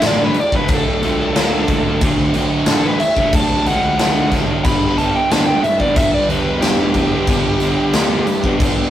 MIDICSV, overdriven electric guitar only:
0, 0, Header, 1, 3, 480
1, 0, Start_track
1, 0, Tempo, 660066
1, 1462, Time_signature, 4, 2, 24, 8
1, 6472, End_track
2, 0, Start_track
2, 0, Title_t, "Overdriven electric guitar"
2, 0, Program_c, 0, 29
2, 27, Note_on_c, 0, 50, 105
2, 38, Note_on_c, 0, 54, 99
2, 41, Note_on_c, 0, 57, 118
2, 45, Note_on_c, 0, 62, 122
2, 146, Note_off_c, 0, 62, 0
2, 149, Note_on_c, 0, 62, 81
2, 154, Note_off_c, 0, 57, 0
2, 157, Note_on_c, 0, 57, 77
2, 162, Note_off_c, 0, 54, 0
2, 165, Note_on_c, 0, 54, 68
2, 272, Note_off_c, 0, 54, 0
2, 273, Note_off_c, 0, 50, 0
2, 275, Note_off_c, 0, 57, 0
2, 279, Note_off_c, 0, 62, 0
2, 391, Note_on_c, 0, 62, 82
2, 396, Note_on_c, 0, 57, 68
2, 403, Note_on_c, 0, 54, 61
2, 748, Note_off_c, 0, 54, 0
2, 749, Note_on_c, 0, 50, 72
2, 755, Note_off_c, 0, 57, 0
2, 757, Note_on_c, 0, 54, 87
2, 763, Note_off_c, 0, 62, 0
2, 763, Note_on_c, 0, 57, 93
2, 766, Note_on_c, 0, 62, 95
2, 973, Note_off_c, 0, 50, 0
2, 978, Note_off_c, 0, 54, 0
2, 982, Note_on_c, 0, 50, 95
2, 986, Note_off_c, 0, 57, 0
2, 986, Note_on_c, 0, 54, 109
2, 995, Note_off_c, 0, 62, 0
2, 995, Note_on_c, 0, 57, 94
2, 998, Note_on_c, 0, 62, 105
2, 1104, Note_off_c, 0, 62, 0
2, 1106, Note_off_c, 0, 57, 0
2, 1107, Note_on_c, 0, 62, 76
2, 1112, Note_off_c, 0, 54, 0
2, 1115, Note_on_c, 0, 57, 68
2, 1121, Note_on_c, 0, 54, 64
2, 1220, Note_off_c, 0, 50, 0
2, 1226, Note_off_c, 0, 54, 0
2, 1229, Note_on_c, 0, 50, 79
2, 1234, Note_off_c, 0, 57, 0
2, 1234, Note_on_c, 0, 54, 77
2, 1243, Note_on_c, 0, 57, 84
2, 1246, Note_off_c, 0, 62, 0
2, 1249, Note_on_c, 0, 62, 80
2, 1349, Note_off_c, 0, 57, 0
2, 1350, Note_off_c, 0, 62, 0
2, 1353, Note_on_c, 0, 62, 70
2, 1358, Note_on_c, 0, 57, 62
2, 1360, Note_off_c, 0, 54, 0
2, 1369, Note_on_c, 0, 54, 55
2, 1456, Note_off_c, 0, 50, 0
2, 1465, Note_on_c, 0, 50, 88
2, 1467, Note_off_c, 0, 54, 0
2, 1473, Note_off_c, 0, 57, 0
2, 1475, Note_on_c, 0, 54, 98
2, 1481, Note_on_c, 0, 57, 106
2, 1483, Note_off_c, 0, 62, 0
2, 1486, Note_on_c, 0, 62, 105
2, 1698, Note_off_c, 0, 50, 0
2, 1706, Note_off_c, 0, 54, 0
2, 1707, Note_on_c, 0, 50, 84
2, 1710, Note_off_c, 0, 57, 0
2, 1714, Note_on_c, 0, 54, 81
2, 1718, Note_off_c, 0, 62, 0
2, 1719, Note_on_c, 0, 57, 87
2, 1721, Note_on_c, 0, 62, 87
2, 1945, Note_off_c, 0, 50, 0
2, 1949, Note_off_c, 0, 54, 0
2, 1954, Note_on_c, 0, 50, 101
2, 1957, Note_off_c, 0, 57, 0
2, 1958, Note_on_c, 0, 54, 89
2, 1966, Note_off_c, 0, 62, 0
2, 1966, Note_on_c, 0, 57, 105
2, 1969, Note_on_c, 0, 62, 107
2, 2074, Note_off_c, 0, 62, 0
2, 2075, Note_off_c, 0, 57, 0
2, 2077, Note_on_c, 0, 62, 82
2, 2083, Note_on_c, 0, 57, 78
2, 2086, Note_off_c, 0, 54, 0
2, 2095, Note_on_c, 0, 54, 62
2, 2191, Note_off_c, 0, 54, 0
2, 2193, Note_off_c, 0, 50, 0
2, 2198, Note_off_c, 0, 57, 0
2, 2200, Note_off_c, 0, 62, 0
2, 2309, Note_on_c, 0, 62, 83
2, 2319, Note_on_c, 0, 57, 69
2, 2324, Note_on_c, 0, 54, 65
2, 2674, Note_off_c, 0, 54, 0
2, 2678, Note_on_c, 0, 50, 85
2, 2681, Note_off_c, 0, 57, 0
2, 2683, Note_on_c, 0, 54, 94
2, 2688, Note_off_c, 0, 62, 0
2, 2689, Note_on_c, 0, 57, 96
2, 2691, Note_on_c, 0, 62, 84
2, 2889, Note_off_c, 0, 50, 0
2, 2894, Note_off_c, 0, 54, 0
2, 2898, Note_on_c, 0, 50, 94
2, 2903, Note_on_c, 0, 54, 114
2, 2904, Note_off_c, 0, 57, 0
2, 2911, Note_off_c, 0, 62, 0
2, 2913, Note_on_c, 0, 57, 103
2, 2914, Note_on_c, 0, 62, 108
2, 3015, Note_off_c, 0, 62, 0
2, 3017, Note_on_c, 0, 62, 74
2, 3020, Note_off_c, 0, 57, 0
2, 3029, Note_off_c, 0, 54, 0
2, 3029, Note_on_c, 0, 57, 77
2, 3038, Note_on_c, 0, 54, 66
2, 3128, Note_off_c, 0, 50, 0
2, 3132, Note_off_c, 0, 54, 0
2, 3137, Note_on_c, 0, 50, 65
2, 3138, Note_off_c, 0, 57, 0
2, 3141, Note_on_c, 0, 54, 78
2, 3144, Note_off_c, 0, 62, 0
2, 3147, Note_on_c, 0, 57, 75
2, 3147, Note_on_c, 0, 62, 86
2, 3246, Note_off_c, 0, 62, 0
2, 3249, Note_on_c, 0, 62, 70
2, 3250, Note_off_c, 0, 57, 0
2, 3259, Note_on_c, 0, 57, 63
2, 3261, Note_off_c, 0, 54, 0
2, 3269, Note_on_c, 0, 54, 57
2, 3365, Note_off_c, 0, 50, 0
2, 3367, Note_off_c, 0, 57, 0
2, 3372, Note_off_c, 0, 54, 0
2, 3383, Note_on_c, 0, 43, 106
2, 3387, Note_on_c, 0, 50, 106
2, 3391, Note_on_c, 0, 55, 118
2, 3392, Note_off_c, 0, 62, 0
2, 3394, Note_on_c, 0, 62, 95
2, 3395, Note_on_c, 0, 59, 105
2, 3617, Note_off_c, 0, 50, 0
2, 3626, Note_on_c, 0, 50, 82
2, 3628, Note_off_c, 0, 55, 0
2, 3631, Note_on_c, 0, 55, 81
2, 3636, Note_off_c, 0, 59, 0
2, 3639, Note_on_c, 0, 59, 79
2, 3640, Note_off_c, 0, 62, 0
2, 3643, Note_on_c, 0, 62, 86
2, 3853, Note_off_c, 0, 43, 0
2, 3856, Note_on_c, 0, 43, 91
2, 3857, Note_off_c, 0, 50, 0
2, 3866, Note_on_c, 0, 50, 109
2, 3867, Note_off_c, 0, 55, 0
2, 3867, Note_off_c, 0, 59, 0
2, 3870, Note_on_c, 0, 55, 98
2, 3870, Note_on_c, 0, 59, 116
2, 3871, Note_off_c, 0, 62, 0
2, 3874, Note_on_c, 0, 62, 110
2, 3978, Note_off_c, 0, 62, 0
2, 3981, Note_on_c, 0, 62, 80
2, 3987, Note_off_c, 0, 59, 0
2, 3990, Note_on_c, 0, 59, 71
2, 3993, Note_off_c, 0, 55, 0
2, 3996, Note_on_c, 0, 55, 62
2, 4093, Note_off_c, 0, 50, 0
2, 4099, Note_off_c, 0, 62, 0
2, 4100, Note_off_c, 0, 55, 0
2, 4106, Note_off_c, 0, 59, 0
2, 4213, Note_on_c, 0, 62, 85
2, 4224, Note_on_c, 0, 59, 73
2, 4227, Note_on_c, 0, 55, 63
2, 4564, Note_off_c, 0, 55, 0
2, 4566, Note_on_c, 0, 50, 79
2, 4569, Note_off_c, 0, 59, 0
2, 4572, Note_on_c, 0, 55, 96
2, 4577, Note_on_c, 0, 59, 86
2, 4581, Note_off_c, 0, 62, 0
2, 4584, Note_on_c, 0, 62, 101
2, 4804, Note_off_c, 0, 50, 0
2, 4812, Note_off_c, 0, 43, 0
2, 4812, Note_on_c, 0, 50, 107
2, 4814, Note_off_c, 0, 55, 0
2, 4815, Note_off_c, 0, 59, 0
2, 4815, Note_on_c, 0, 43, 101
2, 4822, Note_on_c, 0, 55, 101
2, 4824, Note_on_c, 0, 59, 99
2, 4825, Note_off_c, 0, 62, 0
2, 4828, Note_on_c, 0, 62, 97
2, 4925, Note_off_c, 0, 62, 0
2, 4928, Note_on_c, 0, 62, 76
2, 4933, Note_off_c, 0, 59, 0
2, 4940, Note_off_c, 0, 55, 0
2, 4941, Note_on_c, 0, 59, 60
2, 4949, Note_on_c, 0, 55, 64
2, 5045, Note_off_c, 0, 50, 0
2, 5050, Note_off_c, 0, 55, 0
2, 5054, Note_on_c, 0, 50, 77
2, 5058, Note_on_c, 0, 55, 77
2, 5059, Note_off_c, 0, 59, 0
2, 5066, Note_off_c, 0, 62, 0
2, 5067, Note_on_c, 0, 59, 79
2, 5069, Note_on_c, 0, 62, 89
2, 5169, Note_off_c, 0, 62, 0
2, 5177, Note_off_c, 0, 43, 0
2, 5177, Note_on_c, 0, 62, 75
2, 5181, Note_off_c, 0, 59, 0
2, 5184, Note_off_c, 0, 55, 0
2, 5189, Note_on_c, 0, 59, 70
2, 5192, Note_on_c, 0, 55, 61
2, 5288, Note_off_c, 0, 50, 0
2, 5290, Note_on_c, 0, 43, 96
2, 5294, Note_off_c, 0, 55, 0
2, 5294, Note_off_c, 0, 59, 0
2, 5297, Note_on_c, 0, 50, 105
2, 5300, Note_off_c, 0, 62, 0
2, 5303, Note_on_c, 0, 55, 109
2, 5303, Note_on_c, 0, 59, 101
2, 5309, Note_on_c, 0, 62, 113
2, 5526, Note_off_c, 0, 50, 0
2, 5534, Note_on_c, 0, 50, 74
2, 5536, Note_off_c, 0, 55, 0
2, 5539, Note_off_c, 0, 59, 0
2, 5544, Note_on_c, 0, 55, 77
2, 5546, Note_off_c, 0, 62, 0
2, 5548, Note_on_c, 0, 59, 82
2, 5554, Note_on_c, 0, 62, 98
2, 5770, Note_off_c, 0, 43, 0
2, 5775, Note_off_c, 0, 50, 0
2, 5778, Note_on_c, 0, 43, 104
2, 5781, Note_off_c, 0, 55, 0
2, 5783, Note_off_c, 0, 59, 0
2, 5783, Note_on_c, 0, 50, 105
2, 5785, Note_off_c, 0, 62, 0
2, 5789, Note_on_c, 0, 55, 104
2, 5791, Note_on_c, 0, 59, 110
2, 5793, Note_on_c, 0, 62, 97
2, 5889, Note_off_c, 0, 62, 0
2, 5898, Note_on_c, 0, 62, 67
2, 5899, Note_off_c, 0, 59, 0
2, 5908, Note_off_c, 0, 55, 0
2, 5908, Note_on_c, 0, 59, 70
2, 5917, Note_on_c, 0, 55, 61
2, 6008, Note_off_c, 0, 59, 0
2, 6009, Note_off_c, 0, 50, 0
2, 6009, Note_off_c, 0, 55, 0
2, 6014, Note_off_c, 0, 62, 0
2, 6138, Note_off_c, 0, 43, 0
2, 6142, Note_on_c, 0, 62, 83
2, 6149, Note_on_c, 0, 59, 70
2, 6162, Note_on_c, 0, 55, 64
2, 6472, Note_off_c, 0, 55, 0
2, 6472, Note_off_c, 0, 59, 0
2, 6472, Note_off_c, 0, 62, 0
2, 6472, End_track
3, 0, Start_track
3, 0, Title_t, "Muted overdriven electric guitar strokes"
3, 275, Note_on_c, 9, 29, 52
3, 347, Note_off_c, 9, 29, 0
3, 2200, Note_on_c, 9, 29, 55
3, 2272, Note_off_c, 9, 29, 0
3, 4102, Note_on_c, 9, 29, 50
3, 4174, Note_off_c, 9, 29, 0
3, 6017, Note_on_c, 9, 29, 55
3, 6090, Note_off_c, 9, 29, 0
3, 6472, End_track
0, 0, End_of_file